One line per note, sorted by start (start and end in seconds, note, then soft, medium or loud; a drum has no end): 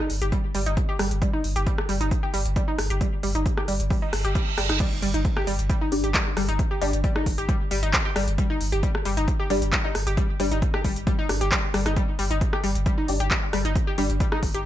0.10 0.21 G1 loud
0.10 open hi-hat loud
0.22 0.32 G1 medium
0.22 0.24 G4 medium
0.22 closed hi-hat medium
0.32 0.37 G3 medium
0.32 kick loud
0.32 closed hi-hat medium
0.55 0.66 G1 loud
0.55 0.59 G3 medium
0.55 open hi-hat loud
0.66 0.77 G1 medium
0.66 0.73 D#4 medium
0.66 closed hi-hat medium
0.77 kick loud
0.77 closed hi-hat medium
0.89 0.91 G4 medium
0.99 1.11 G1 loud
0.99 1.04 G3 medium
0.99 cross-stick medium
0.99 open hi-hat loud
1.11 1.22 G1 medium
1.11 closed hi-hat medium
1.22 1.27 G3 medium
1.22 kick loud
1.22 closed hi-hat medium
1.34 1.40 D#4 medium
1.44 1.55 G1 loud
1.44 open hi-hat loud
1.56 1.66 G1 medium
1.56 1.59 G4 medium
1.56 closed hi-hat medium
1.67 1.71 G3 medium
1.67 kick loud
1.67 closed hi-hat medium
1.78 cross-stick medium
1.89 2.00 G1 loud
1.89 1.94 G3 medium
1.89 open hi-hat loud
2.01 2.11 G1 medium
2.01 2.07 D#4 medium
2.01 closed hi-hat medium
2.11 kick loud
2.11 closed hi-hat medium
2.23 2.26 G4 medium
2.34 2.45 G1 loud
2.34 2.39 G3 medium
2.34 open hi-hat loud
2.45 2.56 G1 medium
2.45 closed hi-hat medium
2.56 2.61 G3 medium
2.56 kick loud
2.56 closed hi-hat medium
2.68 2.74 D#4 medium
2.78 2.90 G1 loud
2.78 cross-stick medium
2.78 open hi-hat loud
2.90 3.01 G1 medium
2.90 2.93 G4 medium
2.90 closed hi-hat medium
3.01 3.06 G3 medium
3.01 kick loud
3.01 closed hi-hat medium
3.23 3.34 G1 loud
3.23 3.28 G3 medium
3.23 open hi-hat loud
3.35 3.45 G1 medium
3.35 3.42 D#4 medium
3.35 closed hi-hat medium
3.46 kick loud
3.46 closed hi-hat medium
3.57 3.60 G4 medium
3.57 cross-stick medium
3.68 3.79 G1 loud
3.68 3.73 G3 medium
3.68 open hi-hat loud
3.80 3.90 G1 medium
3.80 closed hi-hat medium
3.90 3.95 G3 medium
3.90 kick loud
3.90 open hi-hat medium
3.90 reverse cymbal medium
4.02 4.09 D#4 medium
4.13 4.24 G1 loud
4.13 cross-stick medium
4.13 open hi-hat loud
4.25 4.35 G1 medium
4.25 4.27 G4 medium
4.25 closed hi-hat medium
4.35 4.40 G3 medium
4.35 kick loud
4.35 closed hi-hat medium
4.58 4.69 G1 loud
4.58 4.62 G3 medium
4.58 cross-stick medium
4.58 open hi-hat loud
4.69 4.80 G1 medium
4.69 4.76 D#4 medium
4.69 cross-stick medium
4.69 closed hi-hat medium
4.80 4.85 G3 medium
4.80 kick loud
4.80 closed hi-hat medium
4.80 crash loud
4.80 impact medium
5.02 5.14 G1 loud
5.02 5.07 G3 medium
5.02 open hi-hat loud
5.14 5.25 G1 medium
5.14 5.21 D#4 medium
5.14 closed hi-hat medium
5.25 kick loud
5.25 closed hi-hat medium
5.37 5.39 G4 medium
5.37 cross-stick medium
5.47 5.58 G1 loud
5.47 5.52 G3 medium
5.47 open hi-hat medium
5.59 5.69 G1 medium
5.59 closed hi-hat medium
5.70 5.74 G3 medium
5.70 kick loud
5.70 closed hi-hat medium
5.81 5.88 D#4 medium
5.92 6.03 G1 loud
5.92 6.03 D4 loud
5.92 6.03 G4 medium
5.92 6.03 D5 loud
5.92 open hi-hat loud
6.04 6.14 G1 medium
6.04 6.06 G4 medium
6.04 closed hi-hat medium
6.14 6.19 G3 medium
6.14 kick loud
6.14 clap loud
6.14 closed hi-hat medium
6.37 6.48 G1 loud
6.37 6.42 G3 medium
6.37 cross-stick medium
6.37 open hi-hat medium
6.49 6.59 G1 medium
6.49 6.55 D#4 medium
6.49 closed hi-hat medium
6.59 kick loud
6.59 closed hi-hat medium
6.71 6.73 G4 medium
6.81 6.93 G1 loud
6.81 6.86 G3 medium
6.81 6.93 D4 medium
6.81 6.93 G4 medium
6.81 6.93 D5 medium
6.81 open hi-hat loud
6.93 7.04 G1 medium
6.93 closed hi-hat medium
7.04 7.09 G3 medium
7.04 kick loud
7.04 closed hi-hat medium
7.16 7.22 D#4 medium
7.16 cross-stick medium
7.26 7.37 G1 loud
7.26 kick medium
7.26 open hi-hat loud
7.38 7.48 G1 medium
7.38 7.41 G4 medium
7.38 closed hi-hat medium
7.49 7.53 G3 medium
7.49 kick loud
7.49 closed hi-hat medium
7.71 7.82 G1 loud
7.71 7.76 G3 medium
7.71 open hi-hat loud
7.83 7.93 G1 medium
7.83 7.89 D#4 medium
7.83 closed hi-hat medium
7.93 kick loud
7.93 clap loud
7.93 closed hi-hat medium
8.05 8.08 G4 medium
8.16 8.27 G1 loud
8.16 8.21 G3 medium
8.16 cross-stick medium
8.16 open hi-hat medium
8.28 8.38 G1 medium
8.28 closed hi-hat medium
8.38 8.43 G3 medium
8.38 kick loud
8.38 closed hi-hat medium
8.50 8.56 D#4 medium
8.61 8.72 G1 loud
8.61 open hi-hat loud
8.72 8.83 G1 medium
8.72 8.75 G4 medium
8.72 closed hi-hat medium
8.83 8.88 G3 medium
8.83 kick loud
8.83 closed hi-hat medium
8.95 cross-stick medium
9.05 9.17 G1 loud
9.05 9.10 G3 medium
9.05 open hi-hat medium
9.17 9.28 G1 medium
9.17 9.24 D#4 medium
9.17 closed hi-hat medium
9.28 kick loud
9.28 closed hi-hat medium
9.40 9.42 G4 medium
9.50 9.61 G1 loud
9.50 9.55 G3 medium
9.50 9.61 D4 loud
9.50 9.61 G4 medium
9.50 9.61 D5 loud
9.50 open hi-hat loud
9.62 9.72 G1 medium
9.62 closed hi-hat medium
9.73 9.77 G3 medium
9.73 kick loud
9.73 clap loud
9.73 closed hi-hat medium
9.84 9.91 D#4 medium
9.95 10.06 G1 loud
9.95 cross-stick medium
9.95 open hi-hat loud
10.07 10.17 G1 medium
10.07 10.09 G4 medium
10.07 closed hi-hat medium
10.17 10.22 G3 medium
10.17 kick loud
10.17 closed hi-hat medium
10.40 10.51 G1 loud
10.40 10.45 G3 medium
10.40 10.51 D4 medium
10.40 10.51 G4 medium
10.40 10.51 D5 medium
10.40 open hi-hat loud
10.52 10.62 G1 medium
10.52 10.58 D#4 medium
10.52 closed hi-hat medium
10.62 kick loud
10.62 closed hi-hat medium
10.74 10.76 G4 medium
10.74 cross-stick medium
10.84 10.96 G1 loud
10.84 10.89 G3 medium
10.84 kick medium
10.84 open hi-hat medium
10.96 11.07 G1 medium
10.96 closed hi-hat medium
11.07 11.12 G3 medium
11.07 kick loud
11.07 closed hi-hat medium
11.19 11.25 D#4 medium
11.29 11.40 G1 loud
11.29 11.40 D4 medium
11.29 11.40 G4 medium
11.29 11.40 D5 medium
11.29 cross-stick medium
11.29 open hi-hat loud
11.41 11.51 G1 medium
11.41 11.44 G4 medium
11.41 closed hi-hat medium
11.52 11.56 G3 medium
11.52 kick loud
11.52 clap loud
11.52 closed hi-hat medium
11.74 11.85 G1 loud
11.74 11.79 G3 medium
11.74 cross-stick medium
11.74 open hi-hat loud
11.86 11.96 G1 medium
11.86 11.92 D#4 medium
11.86 cross-stick medium
11.86 closed hi-hat medium
11.96 12.01 G3 medium
11.96 kick loud
11.96 closed hi-hat medium
12.19 12.30 G1 loud
12.19 12.24 G3 medium
12.19 open hi-hat loud
12.31 12.41 G1 medium
12.31 12.37 D#4 medium
12.31 closed hi-hat medium
12.41 kick loud
12.41 closed hi-hat medium
12.53 12.56 G4 medium
12.53 cross-stick medium
12.64 12.75 G1 loud
12.64 12.68 G3 medium
12.64 open hi-hat medium
12.75 12.86 G1 medium
12.75 closed hi-hat medium
12.86 12.91 G3 medium
12.86 kick loud
12.86 closed hi-hat medium
12.98 13.04 D#4 medium
13.08 13.20 G1 loud
13.08 13.19 D4 loud
13.08 13.19 G4 medium
13.08 13.19 D5 loud
13.08 open hi-hat loud
13.20 13.31 G1 medium
13.20 13.23 G4 medium
13.20 closed hi-hat medium
13.31 13.36 G3 medium
13.31 kick loud
13.31 clap loud
13.31 closed hi-hat medium
13.53 13.64 G1 loud
13.53 13.58 G3 medium
13.53 cross-stick medium
13.53 open hi-hat medium
13.65 13.75 G1 medium
13.65 13.71 D#4 medium
13.65 closed hi-hat medium
13.76 kick loud
13.76 closed hi-hat medium
13.87 13.90 G4 medium
13.98 14.09 G1 loud
13.98 14.03 G3 medium
13.98 14.09 D4 medium
13.98 14.09 G4 medium
13.98 14.09 D5 medium
13.98 open hi-hat loud
14.10 14.20 G1 medium
14.10 closed hi-hat medium
14.20 14.25 G3 medium
14.20 kick loud
14.20 closed hi-hat medium
14.32 14.39 D#4 medium
14.32 cross-stick medium
14.43 14.54 G1 loud
14.43 kick medium
14.43 open hi-hat medium
14.54 14.65 G1 medium
14.54 14.57 G4 medium
14.54 closed hi-hat medium